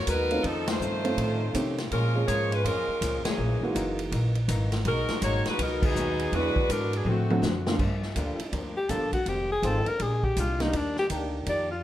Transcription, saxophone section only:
0.08 F#3 D#4 A#4 B4
0.45 F3 C4 D#4 A4
0.68 A3 D#4 F4 C5
1.92 G#3 C#4 F4 A#4
2.28 A#3 F4 G#4 C#5
2.52 G#3 C#4 F4 B4
2.64 G#3 C#4 F4 A#4
3.25 E3 A#3 C#4 G#4
4.86 G#3 D#4 F#4 A#4
5.23 A#3 D#4 F#4 C#5
5.48 G#3 D#4 F#4 B4
5.61 F#3 B3 D#4 A#4
5.85 F#3 B3 D#4 G#4
6.34 G#3 D4 F#4 B4
6.72 F#3 B3 D4 A#4
6.95 F#3 B3 D4 G#4
7.09 D3 A3 C4 F#4

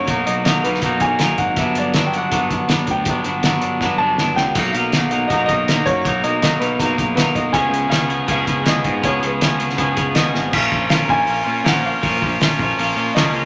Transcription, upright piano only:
Already playing: C#5
0.26 D#5
0.44 D#5
0.64 B4
1.01 G#5
1.38 F#5
1.58 E5
1.78 D5
2.07 G5
2.18 F#5
2.91 G5
3.98 A5
4.36 G5
4.55 F#5
4.73 F5
5.11 F#5
5.28 D#5
5.46 D#5
5.86 C#5
6.24 D#5
6.42 D#5
6.59 B4
7.15 B4
7.35 D#5
7.53 G#5
7.90 F5
8.31 F5
8.68 D#5
9.05 C#5
9.25 B4
10.15 D#5
10.53 F5
10.90 F5
11.04 A#5
11.10 G#5
11.67 F#5
11.86 F5
13.15 D#5

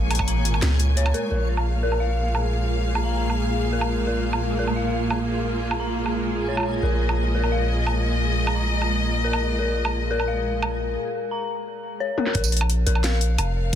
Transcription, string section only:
Already playing: A#2 A#3 F4 G#5
1.31 A#2
1.38 A#3 F4 F5
6.68 D#5
12.88 F5

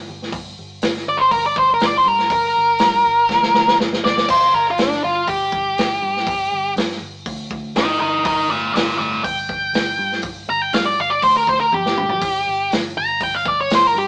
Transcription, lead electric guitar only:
1.09 D5
1.18 C5
1.31 A#4
1.46 D5
1.58 C5
1.74 A#4
1.86 D5
1.97 C5
2.08 A#4
2.32 A#4
4.04 D5
4.30 C5
4.54 A#4
4.71 F4
4.82 D4
5.04 F4
5.28 G4
7.76 A#4 G5
8.00 A#4 G5
8.26 A#4 G5
8.50 D5 F5
8.73 D5 F5
8.98 D5 F5
9.24 G5
10.50 A#5
10.62 G5
10.74 F5
10.86 D5
11.00 F5
11.10 D5
11.23 C5
11.37 A#4
11.49 C5
11.60 A#4
11.74 G4
12.98 A#5
13.23 G5
13.35 F5
13.48 D5
13.61 C#5
13.75 C5
13.87 A#4
13.98 G4

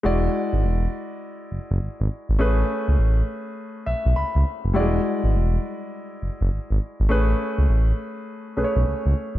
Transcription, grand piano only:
0.03 G#3 E4 F#4 D5
2.39 A3 C#4 G#4 B4
3.86 E5
4.16 B5
4.74 G3 E4 F#4 D5
4.80 G#3
7.09 A3 C#4 G#4 B4
8.57 A3 C#4 G#4 B4
8.64 C#5

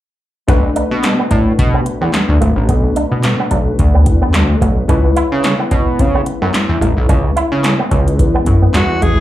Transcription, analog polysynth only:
0.48 A3 D4 F#4 B4
4.88 G#3 C#4 E4 B4

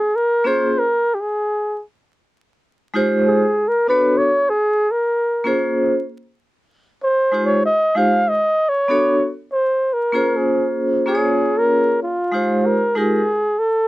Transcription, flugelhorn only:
Already playing: G#4
0.16 A#4
0.47 C5
0.79 A#4
1.14 G4
1.21 G#4
3.27 G#4
3.68 A#4
3.89 B4
4.18 C#5
4.49 G#4
4.91 A#4
7.03 C5
7.46 C#5
7.66 D#5
7.97 F5
8.28 D#5
8.69 C#5
9.51 C5
9.93 A#4
10.36 G#4
11.08 G#4
11.58 A#4
12.03 F4
12.66 A#4
12.97 G#4
13.59 A4

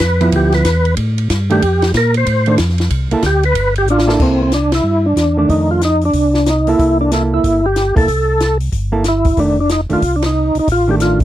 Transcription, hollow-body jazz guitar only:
0.21 F3 B3 E4
1.50 D#3 A3 D4
2.47 D#3 A3 D4
3.12 A#3 E4 A4
4.07 A#3 E4 A4
5.37 D#3 A3 D4
6.67 A#3 E4 A4
7.12 A#3 E4 A4
7.96 A#3 E4 A4
8.92 A#3 E4 A4
9.37 D#3 A3 D4
9.90 D#3 A3 D4
10.88 D#3 A3 D4

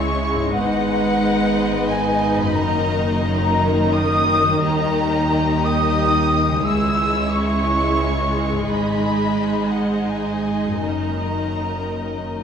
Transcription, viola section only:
Already playing: G#3 E4
0.53 D#4
2.55 D#3
4.61 D#4
6.66 G#3 E4
8.69 D#4
10.83 D#3

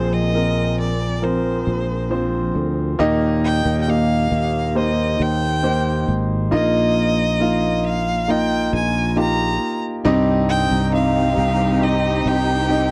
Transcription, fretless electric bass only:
Already playing: A#1
1.67 A#1
2.55 D2
2.99 D#2
3.65 D#2
4.31 D#2
5.20 D#2
6.08 G#1
6.53 A#1
8.73 A#1
10.05 C2
10.71 C2
11.37 C2
12.25 C2

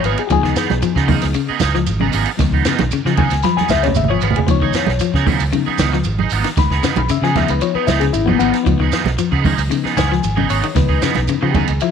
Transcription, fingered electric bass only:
0.03 G#1
0.30 C#2
0.70 B1
0.96 C#3
1.23 C#2
1.50 muted fingered electric bass stroke
1.62 C#2
1.88 G#1
2.14 G#1
2.39 C#2
2.81 B1
3.05 C#3
3.31 C#2
3.57 muted fingered electric bass stroke
3.69 C#2
3.96 G#1
4.21 G#1
4.48 C#2
4.88 B1
5.14 C#3
5.40 C#2
5.67 muted fingered electric bass stroke
5.80 C#2
6.05 G#1
6.32 G#1
6.57 C#2
6.96 B1
7.22 C#3
7.49 C#2
7.75 muted fingered electric bass stroke
7.88 C#2
8.13 G#1
8.39 G#1
8.66 C#2
9.04 B1
9.32 C#3
9.58 C#2
9.85 muted fingered electric bass stroke
9.97 C#2
10.23 G#1
10.50 G#1
10.76 C#2
11.16 B1
11.43 C#3
11.68 C#2

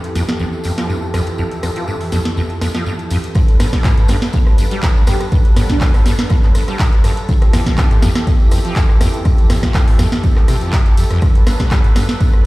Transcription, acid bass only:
0.15 F2
0.40 F2
0.65 F2
0.78 F3
0.89 G2
1.14 F2
1.38 F2
1.63 F2
1.76 F3
1.88 G2
2.12 F2
2.37 F2
2.61 F2
2.75 F3
2.86 G2
3.11 F2
3.35 G2
3.60 G2
3.73 G3
3.84 A2
4.09 G2
4.34 G2
4.58 G2
4.71 G3
4.83 A2
5.07 G2
5.32 G2
5.56 G2
5.70 G3
5.81 A2
6.06 G2
6.30 G2
6.55 G2
6.68 G3
6.80 A2
7.04 G2
7.29 F2
7.53 F2
7.67 F3
7.78 G2
8.03 F2
8.27 F2
8.52 F2
8.65 F3
8.76 G2
9.01 F2
9.25 F2
9.50 F2
9.63 F3
9.75 G2
9.99 F2
10.24 F2
10.48 C3
10.61 F2
10.73 G2
10.98 F2
11.11 F2
11.22 G2
11.47 G2
11.60 G3
11.71 G3
11.96 G2
12.20 G2

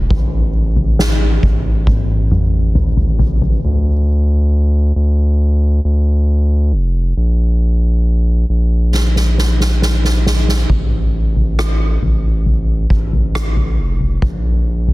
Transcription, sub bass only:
0.10 A1
1.43 A1
3.64 D2
4.96 D2
5.84 D2
6.72 F1
7.17 A#1
8.49 A#1
10.70 A1
12.01 A1
12.90 A1
13.78 F1
14.22 A#1

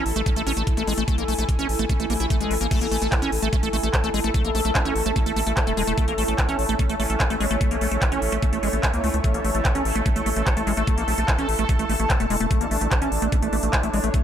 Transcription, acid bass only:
0.16 A3
0.26 A3
0.36 A3
0.47 C#4
0.57 A3
0.77 A3
0.87 G#3
0.98 A3
1.08 A3
1.18 A#3
1.28 A3
1.38 A3
1.59 C#4
1.79 A3
1.90 A3
2.00 A3
2.10 A#3
2.20 E4
2.30 A3
2.40 G#3
2.51 A3
2.61 A#3
2.71 A3
2.81 A#3
2.91 A3
3.02 A3
3.22 C#4
3.42 A3
3.53 A3
3.63 A3
3.73 A3
3.83 A3
4.04 A3
4.14 G#3
4.24 A3
4.34 A3
4.45 A#3
4.55 A3
4.65 A3
4.85 C#4
5.06 A3
5.16 A3
5.26 A3
5.36 A3
5.47 A3
5.67 A3
5.77 G#3
5.87 A3
5.98 A3
6.08 A#3
6.18 A3
6.28 A3
6.49 C#4
6.69 A3
6.79 A3
6.89 A3
7.00 A3
7.10 A3
7.30 A3
7.40 G#3
7.51 A3
7.61 A3
7.71 A#3
7.81 A3
7.91 A3
8.12 C#4
8.32 A3
8.42 A3
8.53 A3
8.63 G#3
8.73 A3
8.94 A#3
9.04 A3
9.14 A3
9.24 A3
9.34 A#3
9.44 A3
9.55 A3
9.75 C#4
9.96 A3
10.06 A3
10.16 A3
10.26 A3
10.36 A3
10.57 A3
10.67 G#3
10.77 A3
10.87 A3
10.98 A#3
11.08 A3
11.18 A3
11.38 C#4
11.59 A3
11.69 A3
11.79 A3
11.89 A3
12.00 A3
12.20 A3
12.30 G#3
12.40 A3
12.51 A3
12.61 A#3
12.71 A3
12.81 A3
13.02 C#4
13.22 A3
13.32 A3
13.42 A3
13.53 A3
13.63 A3
13.83 A3
13.94 G#3
14.04 A3
14.14 A3

